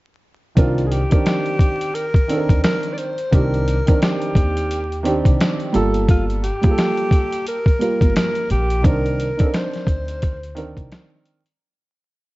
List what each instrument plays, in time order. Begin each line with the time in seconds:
0.55 upright bass C2, upright piano D#3 C4 D4 A#4, alto saxophone F4, kick, closed hi-hat
0.78 closed hi-hat
0.87 alto saxophone G#4
0.92 alto saxophone G4, closed hi-hat
1.10 upright piano D#3 C4 D4 A#4, kick, closed hi-hat
1.26 snare, closed hi-hat
1.46 closed hi-hat
1.59 kick, closed hi-hat
1.81 closed hi-hat
1.95 alto saxophone A#4, closed hi-hat
2.14 kick, closed hi-hat
2.28 upright piano D#3 C4 D4 A4, closed hi-hat
2.38 upright piano A#4
2.49 upright bass D#2, kick, closed hi-hat
2.64 alto saxophone A#4, snare, closed hi-hat
2.83 closed hi-hat
2.93 alto saxophone D5
2.98 alto saxophone C5, closed hi-hat
3.18 closed hi-hat
3.31 upright bass C2, upright piano D#3 C4 D4 G4, alto saxophone A#4, kick, closed hi-hat
3.54 closed hi-hat
3.68 closed hi-hat
3.86 upright piano D#3 C4 D4 A#4, kick, closed hi-hat
4.02 alto saxophone G4, snare, closed hi-hat
4.22 closed hi-hat
4.35 upright bass D#2, kick, closed hi-hat
4.57 closed hi-hat
4.71 closed hi-hat
4.92 closed hi-hat
5.03 upright piano D#3 C4 D4 G4, closed hi-hat
5.25 upright bass C2, kick, closed hi-hat
5.40 snare, closed hi-hat
5.60 closed hi-hat
5.72 upright bass G1, upright piano G3 A#3 F4 A4, closed hi-hat
5.94 closed hi-hat
6.08 alto saxophone F4, kick, closed hi-hat
6.30 closed hi-hat
6.44 alto saxophone G4, closed hi-hat
6.61 upright piano G3 A#3 F4 G#4, kick, closed hi-hat
6.71 upright piano A4
6.78 snare, closed hi-hat
6.97 closed hi-hat
7.11 kick, closed hi-hat
7.32 closed hi-hat
7.46 alto saxophone A#4, closed hi-hat
7.66 kick, closed hi-hat
7.79 upright piano G3 A#3 F4 A#4, closed hi-hat
8.01 upright bass G1, kick, closed hi-hat
8.16 alto saxophone A#4, snare, closed hi-hat
8.35 closed hi-hat
8.50 upright bass A#1, alto saxophone G4, closed hi-hat
8.70 closed hi-hat
8.82 upright bass C2, upright piano D#3 C4 D4 A#4, alto saxophone A#4, kick, closed hi-hat
9.06 closed hi-hat
9.20 closed hi-hat
9.37 upright piano C4 D4 D#4 A4, kick, closed hi-hat
9.46 upright piano A#4
9.54 alto saxophone C5, snare, closed hi-hat
9.73 snare, closed hi-hat
9.87 upright bass D2, kick, closed hi-hat
10.08 closed hi-hat
10.22 kick, closed hi-hat
10.43 closed hi-hat
10.55 upright piano D#3 C4 D4 A#4, closed hi-hat
10.77 upright bass C2, kick, closed hi-hat
10.92 snare, closed hi-hat
11.25 closed hi-hat
11.46 closed hi-hat